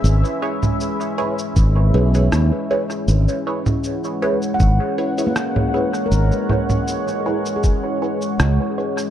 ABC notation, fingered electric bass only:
X:1
M:4/4
L:1/8
Q:"Swing 16ths" 1/4=79
K:C#dor
V:1 name="Fingered electric bass" clef=bass
G,,, z3 G,,, B,,, D,, z | G,,, z3 G,,, z3 | G,,, z4 z C,, z |]